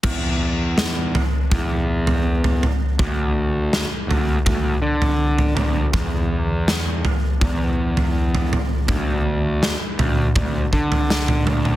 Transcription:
<<
  \new Staff \with { instrumentName = "Picked electric bass" } { \clef bass \time 4/4 \key d \mixolydian \tempo 4 = 81 e,2 e,2 | d,4. d,8 d,8 d4 d,8 | e,2 e,2 | d,4. d,8 d,8 d4 d,8 | }
  \new DrumStaff \with { instrumentName = "Drums" } \drummode { \time 4/4 <cymc bd tomfh>4 sn8 tomfh8 <bd tomfh>8. tomfh16 r16 tomfh16 tomfh8 | <bd tomfh>4 sn8 tomfh8 <bd tomfh>8. tomfh16 r16 tomfh16 tomfh8 | <bd tomfh>4 sn8 tomfh8 <bd tomfh>8. tomfh16 r16 tomfh16 tomfh8 | <bd tomfh>4 sn8 <tomfh toml>8 <bd tomfh>8 bd16 tomfh16 sn16 <tomfh toml>16 tomfh16 toml16 | }
>>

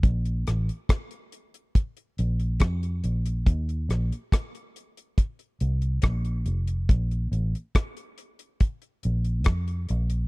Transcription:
<<
  \new Staff \with { instrumentName = "Fingered electric bass" } { \clef bass \time 4/4 \key ees \lydian \tempo 4 = 70 bes,,8 a,,16 r4. r16 bes,,8 f,8 bes,,8 | ees,8 bes,,16 r4. r16 c,8 bes,,8 f,,8 | bes,,8 a,,16 r4. r16 bes,,8 f,8 bes,,8 | }
  \new DrumStaff \with { instrumentName = "Drums" } \drummode { \time 4/4 <hh bd>16 hh16 <hh ss>16 hh16 <hh bd ss>16 hh16 hh16 hh16 <hh bd>16 hh16 hh16 hh16 <hh bd ss>16 hh16 hh16 hh16 | <hh bd>16 hh16 <hh ss>16 hh16 <hh bd ss>16 hh16 hh16 hh16 <hh bd>16 hh16 hh16 hh16 <hh bd ss>16 hh16 hh16 hh16 | <hh bd>16 hh16 hh16 hh16 <hh bd ss>16 hh16 hh16 hh16 <hh bd>16 hh16 hh16 hh16 <hh bd ss>16 hh16 hh16 hh16 | }
>>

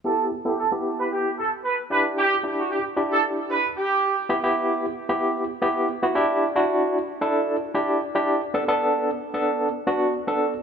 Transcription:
<<
  \new Staff \with { instrumentName = "Horn section" } { \time 4/4 \key g \lydian \tempo 4 = 113 a'8 r16 g'16 a'16 r8 b'16 g'8 a'16 r16 b'16 r16 b'16 r16 | g'8 r16 fis'16 g'16 r8 a'16 r8 b'8 g'8. r16 | r1 | r1 |
r1 | }
  \new Staff \with { instrumentName = "Tine electric piano" } { \time 4/4 \key g \lydian <b e' g'>8 r16 <b e' a'>16 r16 <b e' g'>4~ <b e' g'>16 r4 <d' e' g'>8~ | <d' e' g'>16 r16 <d' e' g'>8. r16 <d' e' g'>4~ <d' e' g'>16 r4 r16 | <b e' g'>16 <b e' g'>8. r8 <b e' g'>8. r16 <b e' g'>8 r16 <b e' fis'>16 <d' e' g'>8 | r16 <d' e' fis'>8. r8 <d' e' a'>8. r16 <d' e' g'>8 r16 <d' e' g'>8 r16 |
<b d' a'>16 <b d' a'>8. r8 <b d' a'>8. r16 <b d' fis'>8 r16 <b d' a'>8 r16 | }
>>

